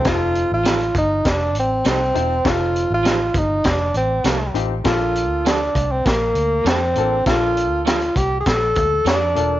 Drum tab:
HH |x-x-xxx-x-x-x-x-|x-x-x-x-x-x-x-x-|x-x-x-x-x-x-x-x-|x-x-xxx-x-x-x-x-|
SD |o---o---o---o---|o---o---o---o---|o---o---o---o---|o---o---o---o---|
BD |o-----o-o-------|o-----o-o-------|o-----o-o-------|o-----o-o-o-----|